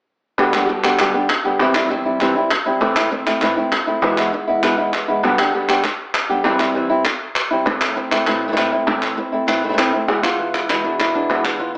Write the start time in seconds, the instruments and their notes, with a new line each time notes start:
0.38 nylon-string guitar G2 B2 D3 G3 B3 G4, muted nylon-string guitar stroke
0.53 nylon-string guitar B2 D3 G3 B3 G4, clap
0.60 nylon-string guitar B2 D3 G3 B3 G4
0.64 nylon-string guitar B2 D3 G3 B3 G4
0.69 nylon-string guitar G2 B2 D3 G3 B3 G4, muted nylon-string guitar stroke
0.83 nylon-string guitar D3 G3 B3 G4, clap
0.99 nylon-string guitar G2 B2 D3 G3 B3 G4, clap
1.14 nylon-string guitar D3 G3 B3 G4
1.29 muted nylon-string guitar stroke, clap
1.45 nylon-string guitar D3 G3 B3 G4
1.60 nylon-string guitar C3 E3 G3 C4 E4, muted nylon-string guitar stroke
1.75 nylon-string guitar E3 G3 C4 E4, clap
1.81 nylon-string guitar E3 G3 C4 E4
1.85 nylon-string guitar E3 G3 C4 E4
1.90 nylon-string guitar C3 E3 G3 C4 E4, muted nylon-string guitar stroke
2.05 nylon-string guitar G3 C4 E4
2.21 nylon-string guitar C3 E3 G3 C4 E4, clap
2.36 nylon-string guitar G3 C4 E4
2.51 muted nylon-string guitar stroke, clap
2.66 nylon-string guitar G3 C4 E4
2.80 nylon-string guitar A2 E3 A3 C4 E4
2.96 nylon-string guitar A3 C4 E4, clap
3.11 nylon-string guitar E3 A3 C4 E4, muted nylon-string guitar stroke
3.26 nylon-string guitar A3 C4 E4, clap
3.41 nylon-string guitar A2 E3 A3 C4 E4, muted nylon-string guitar stroke, clap
3.57 nylon-string guitar A3 C4 E4
3.72 muted nylon-string guitar stroke, clap
3.87 nylon-string guitar A3 C4 E4
4.02 nylon-string guitar E2 B2 E3 G#3 B3 E4, clap
4.17 nylon-string guitar E3 G#3 B3 E4, clap
4.32 nylon-string guitar E3 G#3 B3 E4, muted nylon-string guitar stroke
4.47 nylon-string guitar E3 G#3 B3 E4
4.63 nylon-string guitar E2 B2 E3 G#3 B3 E4, muted nylon-string guitar stroke, clap
4.78 nylon-string guitar E3 G#3 B3 E4
4.93 muted nylon-string guitar stroke, clap
5.08 nylon-string guitar E3 G#3 B3 E4
5.23 nylon-string guitar G2 B2 D3 G3 B3 G4
5.39 nylon-string guitar D3 G3 B3 G4, clap
5.53 nylon-string guitar D3 G3 B3 G4
5.69 nylon-string guitar D3 G3 B3 G4, clap
5.84 muted nylon-string guitar stroke, clap
6.14 clap
6.30 nylon-string guitar D3 G3 B3 G4
6.44 nylon-string guitar C3 E3 G3 C4 E4
6.59 nylon-string guitar G3 C4 E4, clap
6.74 nylon-string guitar E3 G3 C4 E4
6.89 nylon-string guitar G3 C4 E4
7.05 muted nylon-string guitar stroke, clap
7.36 clap
7.51 nylon-string guitar G3 C4 E4
7.66 nylon-string guitar A2 E3 A3 C4 E4, muted nylon-string guitar stroke, clap
7.81 clap
7.96 nylon-string guitar A3 C4 E4, muted nylon-string guitar stroke
8.11 nylon-string guitar A3 C4 E4, clap
8.27 nylon-string guitar A2 E3 A3 C4 E4, muted nylon-string guitar stroke, clap
8.48 nylon-string guitar E3 A3 C4 E4
8.52 nylon-string guitar E3 A3 C4 E4
8.57 nylon-string guitar A2 E3 A3 C4 E4, clap
8.72 nylon-string guitar A3 C4 E4
8.87 nylon-string guitar A2 E3 A3 C4 E4, muted nylon-string guitar stroke
9.02 clap
9.17 nylon-string guitar A3 C4 E4, muted nylon-string guitar stroke
9.32 nylon-string guitar A3 C4 E4
9.47 nylon-string guitar A2 E3 A3 C4 E4, muted nylon-string guitar stroke, clap
9.64 nylon-string guitar E3 A3 C4 E4
9.68 nylon-string guitar E3 A3 C4 E4
9.73 nylon-string guitar E3 A3 C4 E4
9.77 nylon-string guitar A2 E3 A3 C4 E4, clap
9.93 nylon-string guitar A3 C4 E4
10.08 nylon-string guitar E2 B2 E3 G#3 B3 E4 G#4, clap
10.23 nylon-string guitar E3 G#3 B3 E4 F4, clap
10.38 nylon-string guitar E3, muted nylon-string guitar stroke
10.54 nylon-string guitar E3 G#3 B3 E4, clap
10.69 nylon-string guitar E2 B2 E3 G#3 B3 E4, clap
10.84 nylon-string guitar B2 E3 G#3 B3 D4 E4
10.99 nylon-string guitar E4, muted nylon-string guitar stroke, clap
11.14 nylon-string guitar E3 G#3 B3 D4 E4
11.30 nylon-string guitar E2 B2 E3 G#3 B3 E4
11.44 nylon-string guitar E3 G#3 B3 E4 F4, clap
11.59 nylon-string guitar E3 F4, muted nylon-string guitar stroke
11.75 nylon-string guitar E4